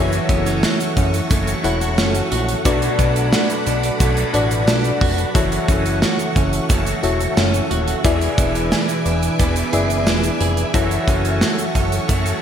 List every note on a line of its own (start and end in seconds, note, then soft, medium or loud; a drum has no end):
0.00 0.20 F#1 loud
0.00 0.29 F#2 medium
0.00 0.29 C#3 medium
0.00 2.65 E3 medium
0.00 0.28 F#3 loud
0.00 1.00 E4 medium
0.00 0.63 F#4 medium
0.00 1.00 F#4 medium
0.00 1.00 A4 medium
0.00 8.01 A4 medium
0.00 1.00 C#5 medium
0.00 1.00 E5 medium
0.00 2.61 E5 medium
0.00 8.01 F#5 medium
0.00 2.63 C#6 medium
0.12 closed hi-hat medium
0.12 shaker soft
0.29 0.66 F#1 loud
0.29 1.31 C#3 medium
0.29 1.34 F#3 medium
0.29 0.46 B3 medium
0.29 kick loud
0.29 closed hi-hat medium
0.29 shaker medium
0.46 0.96 C#4 medium
0.46 closed hi-hat medium
0.46 shaker soft
0.63 1.64 F#4 medium
0.63 snare loud
0.63 tambourine medium
0.63 shaker medium
0.80 closed hi-hat medium
0.80 shaker medium
0.97 1.21 F#1 loud
0.97 1.97 C#4 medium
0.97 kick medium
0.97 closed hi-hat medium
0.97 shaker soft
1.14 closed hi-hat medium
1.14 shaker medium
1.29 1.55 F#1 loud
1.29 2.65 F#2 medium
1.29 2.65 C#3 medium
1.29 2.65 A3 medium
1.29 kick loud
1.29 closed hi-hat medium
1.29 shaker medium
1.34 2.65 F#3 medium
1.47 closed hi-hat medium
1.47 shaker medium
1.64 1.99 E1 loud
1.64 2.42 E4 medium
1.64 1.81 E4 medium
1.64 2.42 F#4 medium
1.64 2.42 A4 medium
1.64 2.43 C#5 medium
1.64 2.43 F#5 loud
1.64 closed hi-hat medium
1.64 shaker soft
1.81 2.31 F#4 medium
1.81 closed hi-hat soft
1.81 shaker soft
1.98 2.22 F#1 loud
1.98 2.72 C#4 medium
1.98 snare loud
1.98 tambourine medium
1.98 shaker medium
2.15 closed hi-hat soft
2.15 shaker medium
2.32 2.56 A#1 medium
2.32 2.66 F#4 medium
2.32 closed hi-hat medium
2.48 closed hi-hat medium
2.48 shaker soft
2.65 2.90 B1 loud
2.65 2.99 B2 medium
2.65 3.62 B2 medium
2.65 2.99 F#3 medium
2.65 4.00 A3 medium
2.65 2.97 B3 loud
2.65 3.69 D4 medium
2.65 3.69 F#4 medium
2.65 3.32 F#4 medium
2.65 3.70 A4 medium
2.65 3.70 B4 medium
2.65 5.32 D5 medium
2.65 3.70 D5 loud
2.65 5.32 B5 medium
2.65 kick loud
2.65 closed hi-hat medium
2.65 shaker medium
2.82 closed hi-hat medium
2.82 shaker soft
2.99 3.35 B1 loud
2.99 4.01 F#3 medium
2.99 4.00 B3 medium
2.99 3.65 D4 medium
2.99 kick loud
2.99 closed hi-hat medium
2.99 shaker medium
3.16 closed hi-hat medium
3.16 shaker medium
3.33 4.34 F#4 medium
3.33 snare loud
3.33 tambourine medium
3.33 shaker medium
3.50 closed hi-hat soft
3.50 shaker medium
3.66 3.91 B1 loud
3.66 4.66 D4 medium
3.66 closed hi-hat medium
3.66 shaker medium
3.83 closed hi-hat medium
3.83 shaker medium
3.99 4.24 B1 loud
3.99 5.34 B2 medium
3.99 5.36 F#3 medium
3.99 6.69 A3 medium
3.99 kick loud
3.99 closed hi-hat medium
3.99 shaker medium
4.04 5.37 B3 medium
4.17 closed hi-hat medium
4.17 shaker medium
4.33 4.69 A1 medium
4.33 5.12 D4 medium
4.33 5.12 F#4 medium
4.33 5.01 F#4 medium
4.33 5.12 A4 medium
4.33 5.12 B4 medium
4.33 5.12 D5 medium
4.33 closed hi-hat medium
4.33 shaker soft
4.51 closed hi-hat soft
4.51 shaker soft
4.67 4.92 B1 loud
4.67 5.42 D4 medium
4.67 snare loud
4.67 tambourine medium
4.67 shaker medium
4.84 closed hi-hat soft
4.84 shaker medium
5.01 5.26 F1 medium
5.01 5.35 F#4 medium
5.01 kick medium
5.01 open hi-hat medium
5.18 closed hi-hat medium
5.18 shaker soft
5.34 5.59 F#1 loud
5.34 5.68 F#2 medium
5.34 5.69 C#3 medium
5.34 8.04 E3 medium
5.34 5.67 F#3 medium
5.34 6.39 E4 medium
5.34 6.39 F#4 medium
5.34 6.01 F#4 medium
5.34 6.39 A4 medium
5.34 6.39 C#5 medium
5.34 12.42 E5 medium
5.34 6.40 E5 medium
5.34 8.02 C#6 medium
5.34 kick loud
5.34 closed hi-hat loud
5.34 shaker medium
5.52 closed hi-hat medium
5.52 shaker soft
5.68 6.05 F#1 loud
5.68 6.70 C#3 medium
5.68 6.69 F#3 medium
5.68 6.35 C#4 medium
5.68 kick loud
5.68 closed hi-hat medium
5.68 shaker medium
5.86 closed hi-hat medium
5.86 shaker soft
6.02 7.02 F#4 medium
6.02 snare loud
6.02 tambourine medium
6.02 shaker medium
6.19 closed hi-hat soft
6.19 shaker soft
6.36 6.60 F#1 loud
6.36 7.36 C#4 medium
6.36 kick medium
6.36 closed hi-hat medium
6.36 shaker medium
6.53 closed hi-hat medium
6.53 shaker medium
6.68 6.94 F#1 loud
6.68 8.04 F#2 medium
6.68 8.04 C#3 medium
6.68 8.11 A3 medium
6.68 kick loud
6.68 closed hi-hat medium
6.68 shaker medium
6.73 8.05 F#3 medium
6.86 closed hi-hat medium
6.86 shaker medium
7.03 7.28 E1 medium
7.03 7.81 E4 medium
7.03 7.81 F#4 medium
7.03 7.70 F#4 medium
7.03 7.81 A4 medium
7.03 7.82 C#5 medium
7.03 7.82 E5 medium
7.03 closed hi-hat medium
7.03 shaker soft
7.21 closed hi-hat soft
7.21 shaker soft
7.37 7.62 F#1 loud
7.37 8.11 C#4 medium
7.37 snare loud
7.37 tambourine medium
7.37 shaker medium
7.54 closed hi-hat soft
7.54 shaker medium
7.71 7.95 D#1 medium
7.71 8.04 F#4 medium
7.71 closed hi-hat medium
7.88 closed hi-hat medium
7.88 shaker soft
8.04 8.29 E1 loud
8.04 8.38 E2 medium
8.04 8.38 B2 medium
8.04 9.02 E3 medium
8.04 10.74 E3 medium
8.04 8.36 E3 medium
8.04 9.08 E4 medium
8.04 8.11 F#4 medium
8.04 8.71 G#4 medium
8.04 9.09 B4 medium
8.04 10.71 B4 medium
8.04 9.09 D5 medium
8.04 9.09 E5 medium
8.04 10.71 G#5 medium
8.04 10.71 D6 medium
8.04 kick loud
8.04 closed hi-hat medium
8.04 shaker medium
8.11 9.12 G#4 medium
8.21 closed hi-hat medium
8.21 shaker soft
8.38 8.75 E1 loud
8.38 9.39 B2 medium
8.38 9.43 E3 medium
8.38 9.04 D4 medium
8.38 kick loud
8.38 closed hi-hat medium
8.38 shaker medium
8.55 closed hi-hat medium
8.55 shaker soft
8.72 9.72 G#4 medium
8.72 snare loud
8.72 tambourine medium
8.72 shaker medium
8.89 closed hi-hat soft
8.89 shaker soft
9.06 9.30 E1 loud
9.06 10.06 D4 medium
9.06 closed hi-hat medium
9.06 shaker medium
9.23 closed hi-hat medium
9.23 shaker medium
9.38 9.64 E1 loud
9.38 10.73 E2 medium
9.38 10.74 B2 medium
9.38 10.81 B3 medium
9.38 kick loud
9.38 closed hi-hat medium
9.38 shaker medium
9.43 10.75 E3 medium
9.56 closed hi-hat medium
9.56 shaker medium
9.72 10.08 F#1 medium
9.72 10.51 E4 medium
9.72 10.51 G#4 medium
9.72 10.39 G#4 medium
9.72 10.51 B4 medium
9.72 10.51 D5 medium
9.72 10.52 E5 loud
9.72 closed hi-hat medium
9.72 shaker soft
9.90 closed hi-hat soft
9.90 shaker soft
10.07 10.31 E1 loud
10.07 10.81 D4 medium
10.07 snare loud
10.07 tambourine medium
10.07 shaker medium
10.23 closed hi-hat soft
10.23 shaker medium
10.41 10.65 F1 loud
10.41 10.74 G#4 medium
10.41 closed hi-hat medium
10.57 closed hi-hat medium
10.57 shaker soft
10.74 10.98 F#1 loud
10.74 11.08 F#2 medium
10.74 11.08 C#3 medium
10.74 12.42 E3 medium
10.74 11.06 F#3 loud
10.74 11.78 E4 medium
10.74 11.78 F#4 medium
10.74 11.41 F#4 medium
10.74 12.42 A4 medium
10.74 11.79 A4 medium
10.74 11.79 C#5 medium
10.74 11.79 E5 loud
10.74 12.42 F#5 medium
10.74 12.42 C#6 medium
10.74 kick loud
10.74 closed hi-hat medium
10.74 shaker medium
10.91 closed hi-hat medium
10.91 shaker soft
11.07 11.44 F#1 loud
11.07 12.09 C#3 medium
11.07 12.12 F#3 medium
11.07 11.74 C#4 medium
11.07 kick loud
11.07 closed hi-hat medium
11.07 shaker medium
11.25 closed hi-hat medium
11.25 shaker medium
11.41 12.42 F#4 medium
11.41 snare loud
11.41 tambourine medium
11.41 shaker medium
11.58 closed hi-hat medium
11.58 shaker medium
11.75 11.99 F#1 loud
11.75 12.42 C#4 medium
11.75 kick medium
11.75 closed hi-hat medium
11.75 shaker medium
11.92 closed hi-hat medium
11.92 shaker medium
12.07 12.33 F#1 loud
12.07 12.42 F#2 medium
12.07 12.42 C#3 medium
12.07 12.42 A3 medium
12.07 kick medium
12.07 closed hi-hat medium
12.07 shaker medium
12.12 12.42 F#3 medium
12.26 closed hi-hat medium
12.26 shaker medium